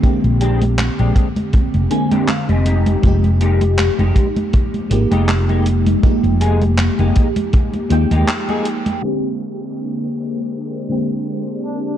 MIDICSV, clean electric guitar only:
0, 0, Header, 1, 3, 480
1, 0, Start_track
1, 0, Tempo, 750000
1, 22, Time_signature, 4, 2, 24, 8
1, 7665, End_track
2, 0, Start_track
2, 0, Title_t, "Clean electric guitar"
2, 0, Program_c, 0, 27
2, 261, Note_on_c, 0, 67, 124
2, 263, Note_on_c, 0, 62, 96
2, 266, Note_on_c, 0, 60, 90
2, 267, Note_on_c, 0, 56, 99
2, 394, Note_off_c, 0, 56, 0
2, 394, Note_off_c, 0, 60, 0
2, 394, Note_off_c, 0, 62, 0
2, 394, Note_off_c, 0, 67, 0
2, 633, Note_on_c, 0, 67, 91
2, 636, Note_on_c, 0, 62, 72
2, 638, Note_on_c, 0, 60, 72
2, 640, Note_on_c, 0, 56, 84
2, 808, Note_off_c, 0, 56, 0
2, 809, Note_off_c, 0, 60, 0
2, 809, Note_off_c, 0, 62, 0
2, 809, Note_off_c, 0, 67, 0
2, 1222, Note_on_c, 0, 80, 74
2, 1345, Note_off_c, 0, 80, 0
2, 1352, Note_on_c, 0, 79, 76
2, 1354, Note_on_c, 0, 67, 127
2, 1357, Note_on_c, 0, 62, 99
2, 1358, Note_on_c, 0, 60, 93
2, 1359, Note_on_c, 0, 56, 98
2, 1455, Note_off_c, 0, 79, 0
2, 1462, Note_off_c, 0, 56, 0
2, 1462, Note_off_c, 0, 60, 0
2, 1463, Note_off_c, 0, 62, 0
2, 1463, Note_off_c, 0, 67, 0
2, 1464, Note_on_c, 0, 77, 72
2, 1586, Note_off_c, 0, 77, 0
2, 1593, Note_on_c, 0, 75, 81
2, 1596, Note_on_c, 0, 67, 95
2, 1598, Note_on_c, 0, 62, 74
2, 1601, Note_on_c, 0, 60, 74
2, 1604, Note_on_c, 0, 56, 83
2, 1697, Note_off_c, 0, 56, 0
2, 1698, Note_off_c, 0, 67, 0
2, 1703, Note_off_c, 0, 60, 0
2, 1703, Note_off_c, 0, 62, 0
2, 1703, Note_on_c, 0, 67, 97
2, 1706, Note_on_c, 0, 63, 81
2, 1709, Note_on_c, 0, 58, 77
2, 1712, Note_on_c, 0, 56, 78
2, 1919, Note_off_c, 0, 75, 0
2, 2097, Note_off_c, 0, 56, 0
2, 2097, Note_off_c, 0, 58, 0
2, 2097, Note_off_c, 0, 63, 0
2, 2097, Note_off_c, 0, 67, 0
2, 2182, Note_on_c, 0, 67, 123
2, 2183, Note_on_c, 0, 63, 94
2, 2185, Note_on_c, 0, 58, 90
2, 2187, Note_on_c, 0, 56, 88
2, 2314, Note_off_c, 0, 56, 0
2, 2314, Note_off_c, 0, 58, 0
2, 2314, Note_off_c, 0, 63, 0
2, 2315, Note_off_c, 0, 67, 0
2, 2552, Note_on_c, 0, 67, 104
2, 2555, Note_on_c, 0, 63, 80
2, 2556, Note_on_c, 0, 58, 67
2, 2561, Note_on_c, 0, 56, 80
2, 2728, Note_off_c, 0, 58, 0
2, 2729, Note_off_c, 0, 56, 0
2, 2729, Note_off_c, 0, 63, 0
2, 2729, Note_off_c, 0, 67, 0
2, 3272, Note_on_c, 0, 67, 125
2, 3275, Note_on_c, 0, 63, 107
2, 3277, Note_on_c, 0, 58, 97
2, 3279, Note_on_c, 0, 56, 99
2, 3382, Note_off_c, 0, 56, 0
2, 3382, Note_off_c, 0, 58, 0
2, 3382, Note_off_c, 0, 63, 0
2, 3382, Note_off_c, 0, 67, 0
2, 3513, Note_on_c, 0, 67, 97
2, 3515, Note_on_c, 0, 63, 81
2, 3516, Note_on_c, 0, 58, 77
2, 3519, Note_on_c, 0, 56, 90
2, 3622, Note_off_c, 0, 56, 0
2, 3622, Note_off_c, 0, 58, 0
2, 3623, Note_off_c, 0, 63, 0
2, 3623, Note_off_c, 0, 67, 0
2, 4102, Note_on_c, 0, 68, 122
2, 4104, Note_on_c, 0, 63, 108
2, 4105, Note_on_c, 0, 58, 103
2, 4108, Note_on_c, 0, 56, 102
2, 4234, Note_off_c, 0, 56, 0
2, 4234, Note_off_c, 0, 58, 0
2, 4234, Note_off_c, 0, 63, 0
2, 4234, Note_off_c, 0, 68, 0
2, 4474, Note_on_c, 0, 63, 86
2, 4475, Note_on_c, 0, 58, 75
2, 4477, Note_on_c, 0, 67, 95
2, 4479, Note_on_c, 0, 56, 80
2, 4648, Note_off_c, 0, 58, 0
2, 4649, Note_off_c, 0, 56, 0
2, 4649, Note_off_c, 0, 63, 0
2, 4650, Note_off_c, 0, 67, 0
2, 5191, Note_on_c, 0, 67, 127
2, 5194, Note_on_c, 0, 63, 106
2, 5195, Note_on_c, 0, 58, 92
2, 5196, Note_on_c, 0, 56, 96
2, 5301, Note_off_c, 0, 56, 0
2, 5302, Note_off_c, 0, 58, 0
2, 5302, Note_off_c, 0, 63, 0
2, 5302, Note_off_c, 0, 67, 0
2, 5431, Note_on_c, 0, 63, 81
2, 5434, Note_on_c, 0, 68, 95
2, 5436, Note_on_c, 0, 58, 80
2, 5437, Note_on_c, 0, 56, 83
2, 5541, Note_off_c, 0, 56, 0
2, 5542, Note_off_c, 0, 58, 0
2, 5542, Note_off_c, 0, 63, 0
2, 5543, Note_off_c, 0, 68, 0
2, 7665, End_track
3, 0, Start_track
3, 0, Title_t, "Muted clean electric guitar strokes"
3, 502, Note_on_c, 9, 29, 32
3, 566, Note_off_c, 9, 29, 0
3, 982, Note_on_c, 9, 29, 31
3, 1046, Note_off_c, 9, 29, 0
3, 2424, Note_on_c, 9, 29, 33
3, 2488, Note_off_c, 9, 29, 0
3, 2903, Note_on_c, 9, 29, 33
3, 2967, Note_off_c, 9, 29, 0
3, 3756, Note_on_c, 9, 29, 35
3, 3820, Note_off_c, 9, 29, 0
3, 4343, Note_on_c, 9, 29, 33
3, 4407, Note_off_c, 9, 29, 0
3, 4822, Note_on_c, 9, 29, 36
3, 4886, Note_off_c, 9, 29, 0
3, 5669, Note_on_c, 9, 29, 33
3, 5733, Note_off_c, 9, 29, 0
3, 7665, End_track
0, 0, End_of_file